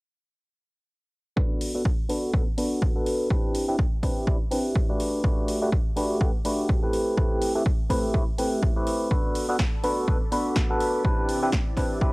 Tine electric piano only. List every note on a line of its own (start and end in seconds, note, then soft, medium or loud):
1.36 1.71 B3 medium
1.36 1.71 D4 medium
1.36 1.71 F#4 medium
1.36 1.72 A4 medium
1.36 1.72 B4 loud
1.74 1.81 B3 medium
1.74 1.81 D4 medium
1.74 1.81 F#4 medium
1.74 1.82 A4 medium
1.74 1.82 B4 loud
2.09 2.31 B3 medium
2.09 2.31 D4 medium
2.09 2.31 F#4 medium
2.09 2.31 A4 medium
2.09 2.31 B4 loud
2.33 2.42 B3 medium
2.33 2.42 D4 medium
2.33 2.42 F#4 medium
2.33 2.42 A4 medium
2.33 2.43 B4 loud
2.57 2.92 B3 medium
2.57 2.92 D4 medium
2.57 2.92 F#4 medium
2.57 2.93 A4 medium
2.57 2.93 B4 medium
2.95 3.28 B3 medium
2.95 3.28 D4 medium
2.95 3.28 F#4 medium
2.95 3.28 A4 medium
2.95 3.28 B4 medium
3.30 3.65 C4 medium
3.30 3.65 D4 medium
3.30 3.65 E4 medium
3.30 3.65 G4 medium
3.30 3.65 B4 loud
3.68 3.75 C4 medium
3.68 3.75 D4 medium
3.68 3.75 E4 medium
3.68 3.75 G4 medium
3.68 3.75 B4 loud
4.03 4.25 C4 medium
4.03 4.25 D4 medium
4.03 4.25 E4 medium
4.03 4.25 G4 medium
4.03 4.25 B4 loud
4.27 4.36 C4 medium
4.27 4.36 D4 medium
4.27 4.36 E4 medium
4.27 4.36 G4 medium
4.27 4.36 B4 loud
4.51 4.86 C4 medium
4.51 4.86 D4 medium
4.51 4.86 E4 medium
4.51 4.86 G4 medium
4.51 4.86 B4 loud
4.89 5.21 A3 medium
4.89 5.21 D4 medium
4.89 5.22 F#4 medium
4.89 5.22 G4 medium
4.89 5.22 B4 medium
5.24 5.59 A3 medium
5.24 5.59 D4 medium
5.24 5.59 F#4 medium
5.24 5.59 G4 medium
5.24 5.59 B4 loud
5.62 5.68 A3 medium
5.62 5.68 D4 medium
5.62 5.69 F#4 medium
5.62 5.69 G4 medium
5.62 5.69 B4 loud
5.96 6.18 A3 medium
5.96 6.18 D4 medium
5.96 6.18 F#4 medium
5.96 6.18 G4 medium
5.96 6.18 B4 loud
6.20 6.29 A3 medium
6.20 6.29 D4 medium
6.20 6.29 F#4 medium
6.20 6.30 G4 medium
6.20 6.30 B4 loud
6.45 6.79 A3 medium
6.45 6.80 D4 medium
6.45 6.80 F#4 medium
6.45 6.80 G4 medium
6.45 6.80 B4 loud
6.82 7.15 A3 medium
6.82 7.15 C4 medium
6.82 7.15 E4 medium
6.82 7.15 G4 medium
6.82 7.15 B4 medium
7.17 7.52 A3 medium
7.17 7.52 C4 medium
7.17 7.52 E4 medium
7.17 7.52 G4 medium
7.17 7.52 B4 loud
7.55 7.62 A3 medium
7.55 7.62 C4 medium
7.55 7.62 E4 medium
7.55 7.62 G4 medium
7.55 7.62 B4 loud
7.90 8.12 A3 medium
7.90 8.12 C4 medium
7.90 8.12 E4 medium
7.90 8.12 G4 medium
7.90 8.12 B4 loud
8.14 8.23 A3 medium
8.14 8.23 C4 medium
8.14 8.23 E4 medium
8.14 8.23 G4 medium
8.14 8.23 B4 loud
8.38 8.73 A3 medium
8.38 8.73 C4 medium
8.38 8.73 E4 medium
8.38 8.73 G4 medium
8.38 8.73 B4 medium
8.76 9.08 A3 medium
8.76 9.09 C4 medium
8.76 9.09 E4 medium
8.76 9.09 G4 medium
8.76 9.09 B4 medium
9.11 9.46 B3 medium
9.11 9.46 D4 medium
9.11 9.46 F#4 medium
9.11 9.46 A4 medium
9.11 9.46 B4 loud
9.49 9.55 B3 medium
9.49 9.56 D4 medium
9.49 9.56 F#4 medium
9.49 9.56 A4 medium
9.49 9.56 B4 loud
9.83 10.05 B3 medium
9.83 10.05 D4 medium
9.83 10.05 F#4 medium
9.83 10.06 A4 medium
9.83 10.06 B4 loud
10.07 10.16 B3 medium
10.07 10.16 D4 medium
10.07 10.16 F#4 medium
10.07 10.17 A4 medium
10.07 10.17 B4 loud
10.32 10.67 B3 medium
10.32 10.67 D4 medium
10.32 10.67 F#4 medium
10.32 10.67 A4 medium
10.32 10.67 B4 loud
10.70 11.02 B3 medium
10.70 11.02 D4 medium
10.70 11.02 F#4 medium
10.70 11.02 A4 medium
10.70 11.02 B4 medium
11.04 11.39 C4 medium
11.04 11.39 D4 medium
11.04 11.39 E4 medium
11.04 11.39 G4 medium
11.04 11.40 B4 loud
11.42 11.49 C4 medium
11.42 11.49 D4 medium
11.42 11.49 E4 medium
11.42 11.49 G4 medium
11.42 11.49 B4 loud
11.77 11.99 C4 medium
11.77 11.99 D4 medium
11.77 11.99 E4 medium
11.77 11.99 G4 medium
11.77 11.99 B4 loud
12.01 12.10 C4 medium
12.01 12.10 D4 medium
12.01 12.10 E4 medium
12.01 12.10 G4 medium
12.01 12.10 B4 loud